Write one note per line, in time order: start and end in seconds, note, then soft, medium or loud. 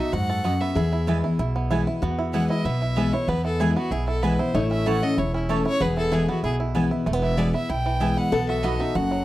0.00 0.10 B2 medium
0.00 0.13 D#4 medium
0.00 0.42 D#4 medium
0.00 0.12 F#4 medium
0.00 0.26 A4 medium
0.00 0.84 A4 medium
0.00 0.14 E5 medium
0.13 0.58 F#2 medium
0.13 0.43 G#2 medium
0.13 0.43 F#4 medium
0.13 0.63 F#5 loud
0.30 0.73 A4 medium
0.44 0.75 F#2 medium
0.44 0.54 B3 medium
0.44 0.54 F#4 medium
0.44 0.76 F#4 medium
0.44 0.54 D#5 medium
0.44 0.54 B5 medium
0.61 1.55 B3 medium
0.61 1.08 E5 medium
0.75 1.21 E2 loud
0.75 1.36 E2 loud
0.75 0.91 E4 medium
0.75 1.83 G#4 medium
0.93 1.23 E4 medium
1.07 1.23 E3 medium
1.07 1.52 E3 medium
1.07 1.23 G#3 medium
1.07 1.17 B3 medium
1.07 1.24 B3 medium
1.07 1.17 E4 medium
1.07 1.22 E4 medium
1.07 1.17 B4 medium
1.07 1.17 G#5 medium
1.24 1.39 B3 soft
1.24 1.38 E4 medium
1.39 1.84 B1 medium
1.39 1.99 B2 loud
1.39 1.69 E4 medium
1.56 1.99 B3 medium
1.70 1.86 E3 medium
1.70 1.87 G#3 medium
1.70 1.80 B3 medium
1.70 1.87 B3 medium
1.70 1.86 E4 medium
1.70 1.80 E4 medium
1.70 1.86 E4 medium
1.70 1.80 B4 medium
1.70 1.81 G#5 medium
1.87 2.02 B3 soft
1.87 2.02 E4 medium
2.02 2.47 E2 loud
2.02 2.63 E2 medium
2.02 2.65 B3 medium
2.02 4.62 F#4 medium
2.19 2.34 E4 medium
2.33 2.64 E3 medium
2.33 2.64 G#3 medium
2.33 2.43 B3 medium
2.33 2.64 B3 medium
2.33 2.43 E4 medium
2.33 2.50 E4 medium
2.33 2.65 E4 loud
2.33 2.43 B4 loud
2.33 2.49 F#5 medium
2.33 2.43 G#5 loud
2.49 2.82 E4 medium
2.49 2.66 D#5 medium
2.65 3.10 B1 medium
2.65 3.25 B2 medium
2.65 3.10 B3 medium
2.65 3.14 E5 medium
2.82 2.97 E4 medium
2.96 3.12 E3 medium
2.96 3.13 G#3 medium
2.96 3.06 B3 medium
2.96 3.13 B3 medium
2.96 3.06 E4 medium
2.96 3.13 E4 soft
2.96 3.12 E4 medium
2.96 3.06 B4 medium
2.96 3.06 G#5 medium
3.12 3.28 B3 soft
3.12 3.28 E4 medium
3.12 3.60 E4 medium
3.12 3.30 C#5 medium
3.28 3.73 E2 loud
3.28 3.88 E2 medium
3.28 3.73 B3 medium
3.28 3.44 B4 medium
3.45 4.85 E3 medium
3.45 3.62 A4 medium
3.59 3.76 E3 medium
3.59 3.76 G#3 medium
3.59 3.69 B3 medium
3.59 3.76 B3 medium
3.59 3.69 E4 medium
3.59 3.91 E4 medium
3.59 3.75 E4 medium
3.59 3.76 G#4 medium
3.59 3.69 B4 loud
3.59 3.70 G#5 loud
3.76 4.20 B3 medium
3.76 3.92 B3 soft
3.76 3.91 E4 medium
3.76 3.93 F#4 medium
3.91 4.36 B1 medium
3.91 4.52 B2 loud
3.91 4.07 E4 medium
3.91 4.07 G#4 medium
4.08 4.39 E4 medium
4.08 4.24 A4 medium
4.22 4.39 E3 medium
4.22 4.39 G#3 medium
4.22 4.32 B3 medium
4.22 4.54 B3 medium
4.22 4.39 B3 medium
4.22 4.32 E4 medium
4.22 4.38 E4 medium
4.22 4.41 B4 medium
4.22 4.33 B4 medium
4.22 4.33 G#5 medium
4.39 4.55 B3 soft
4.39 4.54 E4 medium
4.39 4.86 E4 medium
4.39 4.56 C5 medium
4.54 4.99 A1 loud
4.54 5.15 A2 loud
4.54 4.99 A3 medium
4.54 5.84 E4 medium
4.54 4.70 C#5 medium
4.71 5.15 C#4 medium
4.71 4.89 E5 medium
4.86 5.02 E3 medium
4.86 4.95 A3 medium
4.86 5.02 A3 medium
4.86 5.02 C#4 loud
4.86 5.17 E4 medium
4.86 4.96 E4 medium
4.86 5.01 E4 medium
4.86 4.96 C#5 medium
4.86 5.05 F#5 loud
4.86 4.96 A5 medium
5.02 5.18 C#4 medium
5.02 5.17 E4 medium
5.02 5.46 A4 medium
5.02 5.20 D#5 loud
5.17 5.62 E1 medium
5.17 5.78 E2 medium
5.17 5.65 E4 medium
5.17 5.34 C#5 medium
5.34 5.78 C#4 medium
5.34 5.51 E4 medium
5.49 5.65 E3 medium
5.49 5.58 A3 medium
5.49 5.80 A3 medium
5.49 5.65 A3 medium
5.49 5.65 C#4 medium
5.49 5.59 E4 medium
5.49 5.64 E4 medium
5.49 5.65 A4 medium
5.49 5.59 C#5 loud
5.49 5.59 A5 medium
5.65 5.81 C#4 soft
5.65 5.80 E4 medium
5.65 6.12 E4 medium
5.65 5.83 C#5 loud
5.80 6.25 E1 medium
5.80 6.41 E2 medium
5.80 6.28 B3 medium
5.80 8.40 G#4 medium
5.80 5.97 B4 loud
5.97 6.41 E3 medium
5.97 6.14 A4 medium
6.12 6.28 E3 medium
6.12 6.28 G#3 medium
6.12 6.21 B3 medium
6.12 6.28 B3 medium
6.12 6.21 E4 medium
6.12 6.43 E4 medium
6.12 6.27 E4 loud
6.12 6.29 G#4 medium
6.12 6.22 B4 medium
6.12 6.22 G#5 medium
6.28 6.75 B3 medium
6.28 6.44 B3 soft
6.28 6.43 E4 medium
6.28 6.43 F#4 medium
6.43 6.88 B1 medium
6.43 7.04 B2 medium
6.43 6.59 E4 medium
6.43 6.54 G#4 medium
6.60 6.90 E4 medium
6.75 6.91 E3 medium
6.75 6.91 G#3 medium
6.75 6.84 B3 medium
6.75 7.06 B3 medium
6.75 6.91 B3 medium
6.75 6.84 E4 medium
6.75 6.90 E4 medium
6.75 6.85 B4 loud
6.75 6.85 G#5 medium
6.91 7.07 B3 medium
6.91 7.06 E4 medium
6.91 7.21 E4 medium
7.06 7.51 E1 loud
7.06 7.67 E2 medium
7.06 7.13 A3 medium
7.13 7.37 B3 medium
7.23 7.53 E4 medium
7.23 7.40 E5 medium
7.37 7.53 E3 medium
7.37 7.54 G#3 medium
7.37 7.47 B3 medium
7.37 8.17 B3 medium
7.37 7.54 B3 medium
7.37 7.47 E4 medium
7.37 7.52 E4 loud
7.37 7.47 B4 medium
7.37 7.54 D5 medium
7.37 7.48 G#5 loud
7.54 7.69 B3 soft
7.54 7.69 E4 medium
7.54 7.68 E4 medium
7.54 7.71 E5 medium
7.69 8.14 B1 medium
7.69 8.30 B2 medium
7.69 8.00 E4 medium
7.69 8.19 G5 loud
7.86 8.29 E3 medium
8.00 8.31 E3 medium
8.00 8.31 G#3 medium
8.00 8.10 B3 medium
8.00 8.31 B3 medium
8.00 8.10 E4 loud
8.00 8.33 E4 medium
8.00 8.31 E4 medium
8.00 8.10 B4 medium
8.00 8.11 G#5 loud
8.17 8.32 B3 medium
8.17 8.48 F#5 loud
8.32 8.77 B1 medium
8.32 8.92 B2 medium
8.32 8.64 B3 medium
8.32 9.25 A4 loud
8.48 8.93 F#4 medium
8.48 8.65 E5 medium
8.63 8.79 F#3 medium
8.63 8.73 B3 medium
8.63 8.80 B3 medium
8.63 9.25 B3 medium
8.63 8.80 D#4 loud
8.63 8.73 F#4 medium
8.63 8.78 F#4 medium
8.63 8.82 D#5 medium
8.63 8.73 D#5 medium
8.63 8.73 B5 medium
8.79 9.24 D#4 medium
8.79 8.95 D#4 medium
8.79 8.94 F#4 medium
8.79 8.97 E5 medium
8.95 9.25 F#1 medium
8.95 9.25 F#2 medium
8.95 9.25 F#4 medium
8.95 9.25 F#5 medium
9.11 9.25 F#3 medium